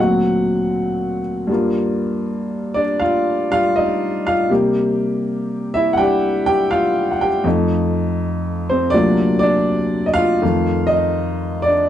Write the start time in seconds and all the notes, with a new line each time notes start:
Already playing: D2 A#2 F#4 F#5
0.00 F#3 C4
1.47 G2 G3 A#3
1.52 F4
2.74 D4 D5
3.00 F4 F5
3.50 G3 F4 F5
3.76 D#4 D#5
4.27 F4 F5
4.49 C3 G3 A#3 G4
5.74 E4 E5
5.93 G3 F#5
5.97 D4 G4 G5
6.46 G4 G5
6.71 F4 F5
7.11 F#5
7.21 G4 G5
7.44 F2 F3 A3 D#4
8.69 C4 C5
8.90 D2 C3 F#3 D4 D5
8.95 A#3 F4
9.39 D4 D5
10.06 D#5
10.14 F5
10.18 F4
10.42 F2 D#3 A3 F4
10.87 D#5
10.93 D#4
11.62 D5
11.68 D4